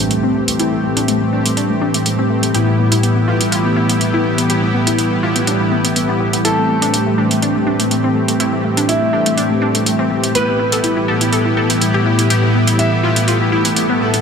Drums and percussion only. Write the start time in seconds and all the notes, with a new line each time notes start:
0.11 closed hi-hat
0.48 closed hi-hat
0.59 closed hi-hat
0.97 closed hi-hat
1.08 closed hi-hat
1.46 closed hi-hat
1.57 closed hi-hat
1.94 closed hi-hat
2.06 closed hi-hat
2.43 closed hi-hat
2.55 closed hi-hat
2.92 closed hi-hat
3.03 closed hi-hat
3.41 closed hi-hat
3.52 closed hi-hat
3.89 closed hi-hat
4.01 closed hi-hat
4.38 closed hi-hat
4.50 closed hi-hat
4.87 closed hi-hat
4.99 closed hi-hat
5.36 closed hi-hat
5.47 closed hi-hat
5.85 closed hi-hat
5.96 closed hi-hat
6.33 closed hi-hat
6.45 closed hi-hat
6.82 closed hi-hat
6.94 closed hi-hat
7.31 closed hi-hat
7.42 closed hi-hat
7.80 closed hi-hat
7.91 closed hi-hat
8.28 closed hi-hat
8.40 closed hi-hat
8.77 closed hi-hat
8.89 closed hi-hat
9.26 closed hi-hat
9.38 closed hi-hat
9.75 closed hi-hat
9.86 closed hi-hat
10.24 closed hi-hat
10.35 closed hi-hat
10.72 closed hi-hat
10.84 closed hi-hat
11.21 closed hi-hat
11.33 closed hi-hat
11.70 closed hi-hat
11.81 closed hi-hat
12.19 closed hi-hat
12.30 closed hi-hat
12.67 closed hi-hat
12.79 closed hi-hat
13.16 closed hi-hat
13.28 closed hi-hat
13.65 closed hi-hat
13.76 closed hi-hat
14.14 closed hi-hat